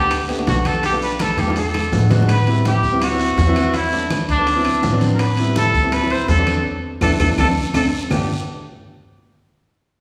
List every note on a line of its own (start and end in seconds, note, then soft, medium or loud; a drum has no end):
0.00 0.43 D2 medium
0.00 0.18 A3 medium
0.00 0.18 B3 medium
0.00 0.18 D4 medium
0.00 0.18 F#4 medium
0.00 0.27 G4 loud
0.11 high bongo medium
0.11 high conga soft
0.11 high timbale loud
0.11 long guiro medium
0.11 claves medium
0.11 maracas medium
0.28 0.35 A3 medium
0.28 0.35 B3 medium
0.28 0.35 D4 medium
0.28 0.35 G4 medium
0.28 high conga soft
0.28 high timbale medium
0.37 0.76 A3 medium
0.37 0.76 B3 medium
0.37 0.76 D4 medium
0.37 0.76 F#4 medium
0.47 1.32 B1 medium
0.47 0.68 F#4 medium
0.47 high bongo medium
0.47 low bongo medium
0.47 high conga medium
0.47 low timbale medium
0.47 short guiro medium
0.47 maracas medium
0.65 0.84 A4 medium
0.65 high conga medium
0.65 high timbale medium
0.65 short guiro medium
0.65 claves medium
0.65 maracas soft
0.83 0.93 G4 medium
0.83 high bongo medium
0.83 high conga soft
0.83 high timbale medium
0.83 long guiro medium
0.83 maracas medium
0.92 1.30 A3 medium
0.92 1.31 B3 medium
0.92 1.31 D4 medium
0.92 1.31 F4 medium
1.02 1.23 B4 medium
1.02 high conga soft
1.02 maracas medium
1.19 1.42 A4 medium
1.19 high bongo medium
1.19 high conga loud
1.19 high timbale medium
1.19 low timbale medium
1.19 short guiro medium
1.19 claves medium
1.19 maracas medium
1.37 1.88 E2 medium
1.37 1.57 G4 medium
1.37 high bongo loud
1.37 high conga soft
1.37 high timbale medium
1.37 short guiro medium
1.37 maracas soft
1.47 1.56 A3 medium
1.47 1.56 B3 medium
1.47 1.56 D4 medium
1.47 1.56 F4 medium
1.47 high bongo medium
1.56 2.08 A4 medium
1.56 high conga soft
1.56 high timbale medium
1.56 long guiro medium
1.56 maracas medium
1.74 high bongo medium
1.74 high conga soft
1.74 high timbale loud
1.74 claves medium
1.92 2.77 A1 medium
1.92 2.05 G#3 medium
1.92 2.05 B3 medium
1.92 2.05 D4 medium
1.92 2.05 F#4 medium
1.92 high conga medium
1.92 low timbale medium
1.92 short guiro medium
1.92 maracas medium
1.99 low bongo medium
2.10 2.29 G#3 medium
2.10 2.29 B3 medium
2.10 2.29 D4 medium
2.10 2.29 F#4 loud
2.10 low bongo loud
2.10 high conga medium
2.10 high timbale medium
2.10 short guiro medium
2.10 maracas soft
2.22 low bongo medium
2.29 2.64 B4 loud
2.29 high bongo medium
2.29 high conga soft
2.29 high timbale loud
2.29 long guiro medium
2.29 claves medium
2.29 maracas medium
2.47 2.79 G3 medium
2.47 2.79 B3 medium
2.47 2.79 C4 medium
2.47 2.79 E4 medium
2.47 high conga soft
2.47 high timbale medium
2.65 3.00 G4 medium
2.65 high bongo medium
2.65 high conga loud
2.65 high timbale medium
2.65 low timbale medium
2.65 short guiro medium
2.65 maracas medium
2.83 3.34 D2 medium
2.83 high conga soft
2.83 short guiro medium
2.83 maracas soft
2.92 3.01 G3 medium
2.92 3.01 B3 medium
2.92 3.01 C4 medium
2.92 3.02 E4 medium
3.01 3.77 F#4 loud
3.01 high bongo medium
3.01 high conga soft
3.01 high timbale loud
3.01 long guiro medium
3.01 claves medium
3.01 maracas medium
3.10 3.36 F#3 medium
3.10 3.36 B3 medium
3.10 3.36 C4 medium
3.10 3.36 E4 medium
3.20 high conga soft
3.20 high timbale medium
3.20 maracas medium
3.37 4.23 E2 medium
3.37 high bongo medium
3.37 low bongo medium
3.37 high conga medium
3.37 low timbale medium
3.37 short guiro medium
3.37 maracas medium
3.47 3.74 F#3 loud
3.47 3.74 B3 medium
3.47 3.74 C4 medium
3.47 3.75 E4 loud
3.56 high conga medium
3.56 high timbale medium
3.56 short guiro medium
3.56 claves medium
3.56 maracas soft
3.74 4.11 E4 loud
3.74 high bongo medium
3.74 high conga soft
3.74 high timbale medium
3.74 long guiro medium
3.74 maracas medium
3.92 4.24 F#3 medium
3.92 4.24 A3 medium
3.92 4.24 B3 medium
3.92 4.24 D4 medium
3.92 high conga soft
3.92 maracas medium
4.10 high bongo medium
4.10 high conga medium
4.10 high timbale medium
4.10 low timbale medium
4.10 short guiro medium
4.10 claves medium
4.10 maracas medium
4.28 4.79 D2 medium
4.28 4.98 D4 loud
4.28 high bongo soft
4.28 high conga soft
4.28 high timbale medium
4.28 short guiro medium
4.28 maracas soft
4.38 4.47 F#3 medium
4.38 4.47 A3 medium
4.38 4.47 B3 medium
4.38 4.47 D4 medium
4.47 high bongo medium
4.47 high conga soft
4.47 high timbale medium
4.47 long guiro medium
4.47 maracas medium
4.55 4.81 F#3 medium
4.55 4.81 B3 medium
4.55 4.81 C4 medium
4.55 4.81 E4 medium
4.65 high bongo soft
4.65 high conga soft
4.65 high timbale medium
4.65 claves medium
4.83 5.68 A1 medium
4.83 high bongo medium
4.83 low bongo medium
4.83 high conga medium
4.83 low timbale medium
4.83 short guiro medium
4.83 maracas medium
4.92 5.20 F#3 loud
4.92 5.20 B3 medium
4.92 5.20 C4 medium
4.92 5.20 D4 loud
5.01 high bongo soft
5.01 high conga medium
5.01 high timbale medium
5.01 short guiro medium
5.01 maracas soft
5.13 5.22 A#4 medium
5.19 5.56 B4 loud
5.19 high bongo medium
5.19 high conga soft
5.19 high timbale medium
5.19 long guiro medium
5.19 claves medium
5.19 maracas medium
5.37 5.70 G3 medium
5.37 5.70 B3 medium
5.37 5.70 C4 medium
5.37 5.70 E4 medium
5.37 high conga soft
5.37 high timbale medium
5.37 maracas medium
5.56 5.95 A4 loud
5.56 high bongo medium
5.56 high conga loud
5.56 high timbale medium
5.56 low timbale medium
5.56 short guiro medium
5.56 maracas medium
5.74 6.25 D2 medium
5.74 high conga soft
5.74 short guiro medium
5.74 maracas soft
5.83 5.92 G3 medium
5.83 5.92 B3 medium
5.83 5.92 C4 medium
5.83 5.93 E4 medium
5.92 6.13 B4 loud
5.92 high bongo medium
5.92 high conga soft
5.92 high timbale medium
5.92 long guiro medium
5.92 claves medium
5.92 maracas medium
6.01 6.27 F#3 medium
6.01 6.27 B3 medium
6.01 6.27 C4 medium
6.01 6.27 E4 medium
6.10 6.29 C5 medium
6.10 high conga soft
6.10 high timbale medium
6.28 6.62 E2 medium
6.28 6.63 A4 loud
6.28 high bongo medium
6.28 low bongo medium
6.28 high conga medium
6.28 low timbale medium
6.28 short guiro medium
6.28 maracas medium
6.38 6.65 F#3 medium
6.38 6.65 B3 medium
6.38 6.65 C4 medium
6.38 6.65 D4 medium
6.47 high conga medium
6.47 high timbale medium
6.47 short guiro medium
6.47 claves medium
6.47 maracas soft
7.01 7.15 E2 medium
7.01 7.13 B3 medium
7.01 7.14 D4 loud
7.01 7.13 E4 medium
7.01 7.11 A4 medium
7.01 low bongo medium
7.01 high conga medium
7.01 high timbale loud
7.01 long guiro loud
7.01 claves medium
7.01 maracas loud
7.19 7.33 E2 medium
7.19 7.31 B3 medium
7.19 7.31 D4 medium
7.19 7.31 E4 medium
7.19 7.29 A4 medium
7.19 low bongo medium
7.19 high conga loud
7.19 high timbale medium
7.19 long guiro loud
7.19 claves medium
7.19 maracas medium
7.38 7.51 D2 medium
7.38 7.50 A3 loud
7.38 7.50 C4 medium
7.38 7.50 D4 loud
7.38 7.48 A4 medium
7.38 low bongo loud
7.38 high conga medium
7.38 high timbale loud
7.38 long guiro medium
7.38 claves medium
7.38 maracas medium
7.74 7.88 D2 medium
7.74 7.86 A3 medium
7.74 7.86 C4 loud
7.74 7.86 D4 loud
7.74 7.84 A4 medium
7.74 low bongo medium
7.74 high conga medium
7.74 high timbale loud
7.74 long guiro medium
7.74 claves loud
7.74 maracas loud
8.10 8.27 G1 medium
8.10 8.28 F#3 medium
8.10 8.28 A3 medium
8.10 8.28 B3 medium
8.10 8.28 D4 medium
8.10 8.29 G4 medium
8.10 low bongo medium
8.10 low conga loud
8.10 low timbale loud
8.10 long guiro medium
8.10 claves medium
8.10 maracas medium